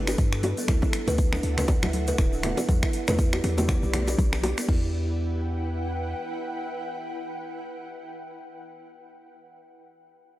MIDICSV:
0, 0, Header, 1, 5, 480
1, 0, Start_track
1, 0, Key_signature, 1, "minor"
1, 0, Tempo, 500000
1, 659, Time_signature, 4, 2, 24, 8
1, 9977, End_track
2, 0, Start_track
2, 0, Title_t, "Ambient pad"
2, 0, Program_c, 0, 92
2, 0, Note_on_c, 0, 55, 80
2, 0, Note_on_c, 0, 62, 72
2, 0, Note_on_c, 0, 69, 77
2, 0, Note_on_c, 0, 71, 93
2, 639, Note_off_c, 0, 55, 0
2, 639, Note_off_c, 0, 71, 0
2, 656, Note_on_c, 0, 78, 93
2, 658, Note_on_c, 0, 76, 76
2, 2539, Note_off_c, 0, 62, 0
2, 2540, Note_off_c, 0, 69, 0
2, 2558, Note_off_c, 0, 78, 0
2, 2559, Note_off_c, 0, 76, 0
2, 2573, Note_on_c, 0, 67, 77
2, 2574, Note_on_c, 0, 74, 88
2, 2575, Note_on_c, 0, 64, 82
2, 4477, Note_off_c, 0, 67, 0
2, 4477, Note_off_c, 0, 74, 0
2, 4478, Note_off_c, 0, 64, 0
2, 4501, Note_on_c, 0, 71, 74
2, 4502, Note_on_c, 0, 64, 82
2, 4503, Note_on_c, 0, 78, 77
2, 4505, Note_on_c, 0, 79, 91
2, 9070, Note_off_c, 0, 64, 0
2, 9070, Note_off_c, 0, 71, 0
2, 9071, Note_off_c, 0, 78, 0
2, 9071, Note_off_c, 0, 79, 0
2, 9977, End_track
3, 0, Start_track
3, 0, Title_t, "Kalimba"
3, 0, Program_c, 1, 108
3, 76, Note_on_c, 1, 62, 80
3, 168, Note_off_c, 1, 62, 0
3, 557, Note_on_c, 1, 59, 80
3, 649, Note_off_c, 1, 59, 0
3, 660, Note_on_c, 1, 64, 107
3, 734, Note_off_c, 1, 64, 0
3, 1034, Note_on_c, 1, 71, 103
3, 1127, Note_off_c, 1, 71, 0
3, 1274, Note_on_c, 1, 62, 77
3, 1368, Note_off_c, 1, 62, 0
3, 1515, Note_on_c, 1, 71, 82
3, 1608, Note_off_c, 1, 71, 0
3, 1757, Note_on_c, 1, 64, 76
3, 1849, Note_off_c, 1, 64, 0
3, 1999, Note_on_c, 1, 71, 104
3, 2090, Note_off_c, 1, 71, 0
3, 2100, Note_on_c, 1, 64, 102
3, 2224, Note_off_c, 1, 64, 0
3, 2238, Note_on_c, 1, 62, 77
3, 2329, Note_off_c, 1, 62, 0
3, 2341, Note_on_c, 1, 59, 81
3, 2464, Note_off_c, 1, 59, 0
3, 2719, Note_on_c, 1, 64, 79
3, 2810, Note_off_c, 1, 64, 0
3, 2957, Note_on_c, 1, 71, 104
3, 3049, Note_off_c, 1, 71, 0
3, 3060, Note_on_c, 1, 64, 102
3, 3184, Note_off_c, 1, 64, 0
3, 3198, Note_on_c, 1, 67, 75
3, 3294, Note_off_c, 1, 67, 0
3, 3300, Note_on_c, 1, 59, 76
3, 3423, Note_off_c, 1, 59, 0
3, 3917, Note_on_c, 1, 62, 79
3, 4009, Note_off_c, 1, 62, 0
3, 4395, Note_on_c, 1, 59, 76
3, 4488, Note_off_c, 1, 59, 0
3, 4497, Note_on_c, 1, 64, 93
3, 4721, Note_off_c, 1, 64, 0
3, 9977, End_track
4, 0, Start_track
4, 0, Title_t, "808-style bass"
4, 0, Program_c, 2, 38
4, 0, Note_on_c, 2, 31, 87
4, 147, Note_off_c, 2, 31, 0
4, 176, Note_on_c, 2, 43, 98
4, 517, Note_off_c, 2, 43, 0
4, 659, Note_on_c, 2, 38, 102
4, 773, Note_off_c, 2, 38, 0
4, 1033, Note_on_c, 2, 38, 86
4, 1349, Note_off_c, 2, 38, 0
4, 1376, Note_on_c, 2, 38, 92
4, 1717, Note_off_c, 2, 38, 0
4, 1756, Note_on_c, 2, 38, 83
4, 2070, Note_off_c, 2, 38, 0
4, 2099, Note_on_c, 2, 26, 94
4, 2438, Note_off_c, 2, 26, 0
4, 2581, Note_on_c, 2, 40, 102
4, 2694, Note_off_c, 2, 40, 0
4, 2960, Note_on_c, 2, 40, 87
4, 3272, Note_off_c, 2, 40, 0
4, 3302, Note_on_c, 2, 40, 87
4, 3640, Note_off_c, 2, 40, 0
4, 3679, Note_on_c, 2, 35, 100
4, 3992, Note_off_c, 2, 35, 0
4, 4018, Note_on_c, 2, 35, 108
4, 4358, Note_off_c, 2, 35, 0
4, 4498, Note_on_c, 2, 40, 101
4, 5900, Note_off_c, 2, 40, 0
4, 9977, End_track
5, 0, Start_track
5, 0, Title_t, "Drums"
5, 71, Note_on_c, 9, 26, 83
5, 71, Note_on_c, 9, 42, 59
5, 78, Note_on_c, 9, 60, 76
5, 78, Note_on_c, 9, 82, 67
5, 167, Note_off_c, 9, 26, 0
5, 167, Note_off_c, 9, 42, 0
5, 174, Note_off_c, 9, 60, 0
5, 174, Note_off_c, 9, 82, 0
5, 174, Note_on_c, 9, 63, 105
5, 175, Note_on_c, 9, 42, 45
5, 177, Note_on_c, 9, 36, 122
5, 181, Note_on_c, 9, 82, 64
5, 184, Note_on_c, 9, 62, 43
5, 270, Note_off_c, 9, 63, 0
5, 271, Note_off_c, 9, 42, 0
5, 273, Note_off_c, 9, 36, 0
5, 277, Note_off_c, 9, 82, 0
5, 280, Note_off_c, 9, 62, 0
5, 313, Note_on_c, 9, 26, 89
5, 318, Note_on_c, 9, 82, 38
5, 409, Note_off_c, 9, 26, 0
5, 412, Note_on_c, 9, 62, 53
5, 414, Note_off_c, 9, 82, 0
5, 414, Note_on_c, 9, 61, 62
5, 415, Note_on_c, 9, 46, 83
5, 420, Note_on_c, 9, 60, 91
5, 508, Note_off_c, 9, 62, 0
5, 510, Note_off_c, 9, 61, 0
5, 511, Note_off_c, 9, 46, 0
5, 516, Note_off_c, 9, 60, 0
5, 551, Note_on_c, 9, 46, 49
5, 557, Note_on_c, 9, 82, 79
5, 647, Note_off_c, 9, 46, 0
5, 652, Note_on_c, 9, 63, 102
5, 653, Note_off_c, 9, 82, 0
5, 656, Note_on_c, 9, 26, 75
5, 656, Note_on_c, 9, 42, 47
5, 657, Note_on_c, 9, 36, 113
5, 659, Note_on_c, 9, 62, 58
5, 748, Note_off_c, 9, 63, 0
5, 752, Note_off_c, 9, 26, 0
5, 752, Note_off_c, 9, 42, 0
5, 753, Note_off_c, 9, 36, 0
5, 755, Note_off_c, 9, 62, 0
5, 789, Note_on_c, 9, 61, 94
5, 795, Note_on_c, 9, 36, 85
5, 796, Note_on_c, 9, 82, 37
5, 885, Note_off_c, 9, 61, 0
5, 891, Note_off_c, 9, 36, 0
5, 892, Note_off_c, 9, 82, 0
5, 894, Note_on_c, 9, 26, 86
5, 894, Note_on_c, 9, 46, 91
5, 904, Note_on_c, 9, 62, 40
5, 990, Note_off_c, 9, 26, 0
5, 990, Note_off_c, 9, 46, 0
5, 1000, Note_off_c, 9, 62, 0
5, 1033, Note_on_c, 9, 42, 61
5, 1033, Note_on_c, 9, 64, 87
5, 1042, Note_on_c, 9, 82, 75
5, 1129, Note_off_c, 9, 42, 0
5, 1129, Note_off_c, 9, 64, 0
5, 1134, Note_on_c, 9, 42, 47
5, 1138, Note_off_c, 9, 82, 0
5, 1138, Note_on_c, 9, 36, 123
5, 1141, Note_on_c, 9, 82, 72
5, 1230, Note_off_c, 9, 42, 0
5, 1234, Note_off_c, 9, 36, 0
5, 1237, Note_off_c, 9, 82, 0
5, 1272, Note_on_c, 9, 61, 64
5, 1273, Note_on_c, 9, 26, 88
5, 1277, Note_on_c, 9, 62, 53
5, 1289, Note_on_c, 9, 82, 40
5, 1368, Note_off_c, 9, 61, 0
5, 1369, Note_off_c, 9, 26, 0
5, 1373, Note_off_c, 9, 62, 0
5, 1375, Note_on_c, 9, 46, 88
5, 1385, Note_off_c, 9, 82, 0
5, 1471, Note_off_c, 9, 46, 0
5, 1514, Note_on_c, 9, 26, 80
5, 1514, Note_on_c, 9, 42, 62
5, 1514, Note_on_c, 9, 64, 113
5, 1521, Note_on_c, 9, 62, 45
5, 1525, Note_on_c, 9, 82, 76
5, 1610, Note_off_c, 9, 26, 0
5, 1610, Note_off_c, 9, 42, 0
5, 1610, Note_off_c, 9, 64, 0
5, 1613, Note_on_c, 9, 60, 113
5, 1614, Note_on_c, 9, 61, 94
5, 1617, Note_off_c, 9, 62, 0
5, 1617, Note_off_c, 9, 82, 0
5, 1617, Note_on_c, 9, 42, 49
5, 1617, Note_on_c, 9, 82, 59
5, 1618, Note_on_c, 9, 36, 115
5, 1709, Note_off_c, 9, 60, 0
5, 1710, Note_off_c, 9, 61, 0
5, 1713, Note_off_c, 9, 42, 0
5, 1713, Note_off_c, 9, 82, 0
5, 1714, Note_off_c, 9, 36, 0
5, 1754, Note_on_c, 9, 82, 37
5, 1756, Note_on_c, 9, 26, 91
5, 1756, Note_on_c, 9, 62, 58
5, 1756, Note_on_c, 9, 63, 111
5, 1757, Note_on_c, 9, 60, 77
5, 1850, Note_off_c, 9, 82, 0
5, 1852, Note_off_c, 9, 26, 0
5, 1852, Note_off_c, 9, 62, 0
5, 1852, Note_off_c, 9, 63, 0
5, 1853, Note_off_c, 9, 60, 0
5, 1856, Note_on_c, 9, 46, 97
5, 1860, Note_on_c, 9, 63, 82
5, 1952, Note_off_c, 9, 46, 0
5, 1956, Note_off_c, 9, 63, 0
5, 1992, Note_on_c, 9, 82, 76
5, 1994, Note_on_c, 9, 42, 59
5, 1995, Note_on_c, 9, 64, 75
5, 2088, Note_off_c, 9, 82, 0
5, 2090, Note_off_c, 9, 42, 0
5, 2091, Note_off_c, 9, 64, 0
5, 2095, Note_on_c, 9, 62, 45
5, 2095, Note_on_c, 9, 82, 62
5, 2097, Note_on_c, 9, 26, 78
5, 2097, Note_on_c, 9, 42, 48
5, 2098, Note_on_c, 9, 36, 118
5, 2107, Note_on_c, 9, 61, 65
5, 2191, Note_off_c, 9, 62, 0
5, 2191, Note_off_c, 9, 82, 0
5, 2193, Note_off_c, 9, 26, 0
5, 2193, Note_off_c, 9, 42, 0
5, 2194, Note_off_c, 9, 36, 0
5, 2203, Note_off_c, 9, 61, 0
5, 2235, Note_on_c, 9, 82, 42
5, 2331, Note_off_c, 9, 82, 0
5, 2331, Note_on_c, 9, 62, 51
5, 2337, Note_on_c, 9, 26, 85
5, 2337, Note_on_c, 9, 46, 87
5, 2346, Note_on_c, 9, 64, 96
5, 2427, Note_off_c, 9, 62, 0
5, 2433, Note_off_c, 9, 26, 0
5, 2433, Note_off_c, 9, 46, 0
5, 2442, Note_off_c, 9, 64, 0
5, 2470, Note_on_c, 9, 61, 91
5, 2473, Note_on_c, 9, 42, 55
5, 2475, Note_on_c, 9, 60, 81
5, 2479, Note_on_c, 9, 82, 82
5, 2566, Note_off_c, 9, 61, 0
5, 2569, Note_off_c, 9, 42, 0
5, 2571, Note_off_c, 9, 60, 0
5, 2575, Note_off_c, 9, 82, 0
5, 2578, Note_on_c, 9, 42, 46
5, 2579, Note_on_c, 9, 36, 117
5, 2586, Note_on_c, 9, 62, 55
5, 2587, Note_on_c, 9, 82, 66
5, 2588, Note_on_c, 9, 63, 100
5, 2674, Note_off_c, 9, 42, 0
5, 2675, Note_off_c, 9, 36, 0
5, 2682, Note_off_c, 9, 62, 0
5, 2683, Note_off_c, 9, 82, 0
5, 2684, Note_off_c, 9, 63, 0
5, 2715, Note_on_c, 9, 26, 90
5, 2715, Note_on_c, 9, 82, 37
5, 2716, Note_on_c, 9, 36, 82
5, 2811, Note_off_c, 9, 26, 0
5, 2811, Note_off_c, 9, 82, 0
5, 2812, Note_off_c, 9, 36, 0
5, 2816, Note_on_c, 9, 46, 92
5, 2828, Note_on_c, 9, 62, 41
5, 2912, Note_off_c, 9, 46, 0
5, 2924, Note_off_c, 9, 62, 0
5, 2955, Note_on_c, 9, 82, 77
5, 2956, Note_on_c, 9, 26, 79
5, 2956, Note_on_c, 9, 42, 62
5, 2959, Note_on_c, 9, 61, 64
5, 2962, Note_on_c, 9, 64, 102
5, 3051, Note_off_c, 9, 82, 0
5, 3052, Note_off_c, 9, 26, 0
5, 3052, Note_off_c, 9, 42, 0
5, 3055, Note_off_c, 9, 61, 0
5, 3058, Note_off_c, 9, 64, 0
5, 3059, Note_on_c, 9, 36, 124
5, 3059, Note_on_c, 9, 42, 50
5, 3059, Note_on_c, 9, 82, 69
5, 3155, Note_off_c, 9, 36, 0
5, 3155, Note_off_c, 9, 42, 0
5, 3155, Note_off_c, 9, 82, 0
5, 3191, Note_on_c, 9, 82, 41
5, 3197, Note_on_c, 9, 26, 90
5, 3200, Note_on_c, 9, 60, 79
5, 3200, Note_on_c, 9, 62, 53
5, 3287, Note_off_c, 9, 82, 0
5, 3293, Note_off_c, 9, 26, 0
5, 3296, Note_off_c, 9, 60, 0
5, 3296, Note_off_c, 9, 62, 0
5, 3299, Note_on_c, 9, 63, 65
5, 3301, Note_on_c, 9, 46, 92
5, 3301, Note_on_c, 9, 61, 90
5, 3395, Note_off_c, 9, 63, 0
5, 3397, Note_off_c, 9, 46, 0
5, 3397, Note_off_c, 9, 61, 0
5, 3434, Note_on_c, 9, 60, 81
5, 3438, Note_on_c, 9, 42, 62
5, 3439, Note_on_c, 9, 64, 103
5, 3441, Note_on_c, 9, 82, 77
5, 3444, Note_on_c, 9, 62, 43
5, 3530, Note_off_c, 9, 60, 0
5, 3530, Note_on_c, 9, 63, 81
5, 3534, Note_off_c, 9, 42, 0
5, 3535, Note_off_c, 9, 64, 0
5, 3537, Note_off_c, 9, 82, 0
5, 3538, Note_on_c, 9, 82, 60
5, 3539, Note_on_c, 9, 36, 115
5, 3540, Note_off_c, 9, 62, 0
5, 3541, Note_on_c, 9, 26, 79
5, 3541, Note_on_c, 9, 42, 47
5, 3542, Note_on_c, 9, 64, 102
5, 3626, Note_off_c, 9, 63, 0
5, 3634, Note_off_c, 9, 82, 0
5, 3635, Note_off_c, 9, 36, 0
5, 3637, Note_off_c, 9, 26, 0
5, 3637, Note_off_c, 9, 42, 0
5, 3638, Note_off_c, 9, 64, 0
5, 3675, Note_on_c, 9, 82, 39
5, 3677, Note_on_c, 9, 62, 55
5, 3771, Note_off_c, 9, 82, 0
5, 3773, Note_off_c, 9, 62, 0
5, 3778, Note_on_c, 9, 26, 97
5, 3778, Note_on_c, 9, 46, 98
5, 3779, Note_on_c, 9, 61, 66
5, 3779, Note_on_c, 9, 64, 90
5, 3874, Note_off_c, 9, 26, 0
5, 3874, Note_off_c, 9, 46, 0
5, 3875, Note_off_c, 9, 61, 0
5, 3875, Note_off_c, 9, 64, 0
5, 3913, Note_on_c, 9, 60, 90
5, 3915, Note_on_c, 9, 82, 77
5, 3918, Note_on_c, 9, 42, 63
5, 4009, Note_off_c, 9, 60, 0
5, 4011, Note_off_c, 9, 82, 0
5, 4014, Note_off_c, 9, 42, 0
5, 4017, Note_on_c, 9, 62, 47
5, 4017, Note_on_c, 9, 63, 106
5, 4017, Note_on_c, 9, 82, 67
5, 4018, Note_on_c, 9, 36, 118
5, 4020, Note_on_c, 9, 42, 48
5, 4113, Note_off_c, 9, 62, 0
5, 4113, Note_off_c, 9, 63, 0
5, 4113, Note_off_c, 9, 82, 0
5, 4114, Note_off_c, 9, 36, 0
5, 4116, Note_off_c, 9, 42, 0
5, 4155, Note_on_c, 9, 26, 96
5, 4156, Note_on_c, 9, 61, 85
5, 4158, Note_on_c, 9, 82, 42
5, 4247, Note_on_c, 9, 63, 57
5, 4251, Note_off_c, 9, 26, 0
5, 4252, Note_off_c, 9, 61, 0
5, 4254, Note_off_c, 9, 82, 0
5, 4258, Note_on_c, 9, 46, 92
5, 4258, Note_on_c, 9, 60, 108
5, 4262, Note_on_c, 9, 62, 54
5, 4343, Note_off_c, 9, 63, 0
5, 4354, Note_off_c, 9, 46, 0
5, 4354, Note_off_c, 9, 60, 0
5, 4358, Note_off_c, 9, 62, 0
5, 4395, Note_on_c, 9, 26, 76
5, 4395, Note_on_c, 9, 46, 54
5, 4398, Note_on_c, 9, 82, 80
5, 4491, Note_off_c, 9, 26, 0
5, 4491, Note_off_c, 9, 46, 0
5, 4494, Note_off_c, 9, 82, 0
5, 4498, Note_on_c, 9, 36, 121
5, 4499, Note_on_c, 9, 49, 86
5, 4594, Note_off_c, 9, 36, 0
5, 4595, Note_off_c, 9, 49, 0
5, 9977, End_track
0, 0, End_of_file